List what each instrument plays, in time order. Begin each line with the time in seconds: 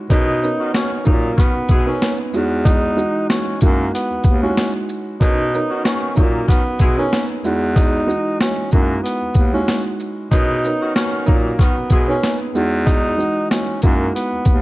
0.09 bass clarinet B2, saxophone section E3 G#3 G#4, upright piano B3 C#4 D#4 A#4, tenor saxophone D#4, kick, closed hi-hat
0.43 upright piano B3 C#4 D#4 A#4, shaker
0.60 saxophone section D#3 C#4 F#4
0.74 saxophone section D#3 C#4 F#4, tenor saxophone C#4, snare, closed hi-hat
1.04 saxophone section A#2 F#3 D#4, bass clarinet A#2, upright piano F#3 C#4 D#4 A#4, tenor saxophone A#3, kick, shaker
1.38 saxophone section D#3 C#4 F#4, tenor saxophone B3, kick, closed hi-hat
1.56 bass clarinet B2
1.68 bass clarinet B2, saxophone section G#3 E4 G#4, kick, closed hi-hat, shaker
1.86 upright piano B3 C#4 D#4 A#4, tenor saxophone C#4
2.02 snare, closed hi-hat
2.33 bass clarinet E2, upright piano G#3 D#4 E4 F#4, shaker
2.65 upright piano G#3 D#4 E4 F#4, tenor saxophone D#4, kick, closed hi-hat
2.96 upright piano E3 G#3 D#4 F#4, shaker
3.29 tenor saxophone C#4, snare, closed hi-hat
3.61 bass clarinet F#2, upright piano G#3 D#4 E4 F#4, tenor saxophone A#3, kick, closed hi-hat, shaker
3.94 tenor saxophone B3, closed hi-hat
4.11 bass clarinet D#2
4.24 bass clarinet D#2, kick, closed hi-hat, shaker
4.42 upright piano G#3 D#4 E4 F#4, tenor saxophone C#4
4.57 snare, closed hi-hat
4.89 shaker
5.20 bass clarinet B2, saxophone section E3 G#3 G#4, upright piano B3 C#4 D#4 A#4, tenor saxophone D#4, kick, closed hi-hat
5.54 upright piano B3 C#4 D#4 A#4, shaker
5.70 saxophone section D#3 C#4 F#4
5.85 saxophone section D#3 C#4 F#4, tenor saxophone C#4, snare, closed hi-hat
6.15 saxophone section A#2 F#3 D#4, bass clarinet A#2, upright piano F#3 C#4 D#4 A#4, tenor saxophone A#3, kick, shaker
6.48 saxophone section D#3 C#4 F#4, tenor saxophone B3, kick, closed hi-hat
6.66 bass clarinet B2
6.79 bass clarinet B2, saxophone section G#3 E4 G#4, kick, closed hi-hat, shaker
6.97 upright piano B3 C#4 D#4 A#4, tenor saxophone C#4
7.13 snare, closed hi-hat
7.44 bass clarinet E2, upright piano G#3 D#4 E4 F#4, shaker
7.76 upright piano G#3 D#4 E4 F#4, tenor saxophone D#4, kick, closed hi-hat
8.07 upright piano E3 G#3 D#4 F#4, shaker
8.40 tenor saxophone C#4, snare, closed hi-hat
8.71 bass clarinet F#2, upright piano G#3 D#4 E4 F#4, tenor saxophone A#3, kick, shaker
9.03 tenor saxophone B3, closed hi-hat
9.22 bass clarinet D#2
9.35 bass clarinet D#2, kick, closed hi-hat, shaker
9.53 upright piano G#3 D#4 E4 F#4, tenor saxophone C#4
9.68 snare, closed hi-hat
10.00 shaker
10.31 bass clarinet B2, saxophone section E3 G#3 G#4, upright piano B3 C#4 D#4 A#4, tenor saxophone D#4, kick, closed hi-hat
10.64 upright piano B3 C#4 D#4 A#4, shaker
10.81 saxophone section D#3 C#4 F#4
10.95 saxophone section D#3 C#4 F#4, tenor saxophone C#4, snare, closed hi-hat
11.26 saxophone section A#2 F#3 D#4, bass clarinet A#2, upright piano F#3 C#4 D#4 A#4, tenor saxophone A#3, kick, shaker
11.59 saxophone section D#3 C#4 F#4, tenor saxophone B3, kick, closed hi-hat
11.77 bass clarinet B2
11.90 bass clarinet B2, saxophone section G#3 E4 G#4, kick, closed hi-hat, shaker
12.08 upright piano B3 C#4 D#4 A#4, tenor saxophone C#4
12.23 snare, closed hi-hat
12.55 bass clarinet E2, upright piano G#3 D#4 E4 F#4, shaker
12.86 upright piano G#3 D#4 E4 F#4, tenor saxophone D#4, kick, closed hi-hat
13.18 upright piano E3 G#3 D#4 F#4, shaker
13.51 tenor saxophone C#4, snare, closed hi-hat
13.82 bass clarinet F#2, upright piano G#3 D#4 E4 F#4, tenor saxophone A#3, kick, closed hi-hat, shaker
14.15 tenor saxophone B3, closed hi-hat
14.32 bass clarinet D#2
14.45 bass clarinet D#2, kick, closed hi-hat, shaker